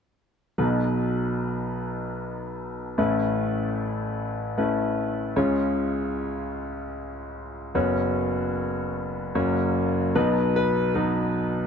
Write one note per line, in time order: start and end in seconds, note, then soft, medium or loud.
0.58 2.94 B1 soft
0.58 2.94 B2 soft
0.58 2.94 F#3 soft
0.58 2.94 B3 soft
0.58 2.94 D#4 soft
0.58 2.94 B4 medium
2.98 5.33 A1 soft
2.98 5.33 A2 soft
2.98 4.54 A3 soft
2.98 4.54 C#4 soft
2.98 4.54 E4 soft
2.98 4.54 B4 soft
4.58 5.37 A3 soft
4.58 5.35 C#4 soft
4.58 5.37 E4 soft
4.58 5.37 B4 soft
5.36 7.71 C#2 soft
5.36 7.71 C#3 soft
5.36 7.71 G#3 soft
5.36 7.71 C#4 soft
5.36 7.71 F4 soft
5.36 7.71 C#5 medium
7.75 9.31 F#1 soft
7.75 9.31 F#2 soft
7.75 9.32 B3 soft
7.75 9.32 C#4 soft
7.75 9.32 F#4 soft
7.75 9.32 C#5 soft
9.35 10.12 F#1 soft
9.35 10.12 F#2 soft
9.35 10.16 A#3 soft
9.35 10.16 C#4 soft
9.35 10.16 F#4 soft
9.35 10.16 C#5 medium
10.15 11.67 B1 soft
10.15 11.67 B2 soft
10.15 10.91 F#3 medium
10.15 10.91 B3 medium
10.15 10.92 D#4 medium
10.15 10.55 B4 medium
10.56 10.94 B4 medium
10.95 11.67 F#3 soft
10.95 11.67 B3 soft
10.95 11.67 D#4 soft
10.95 11.67 B4 medium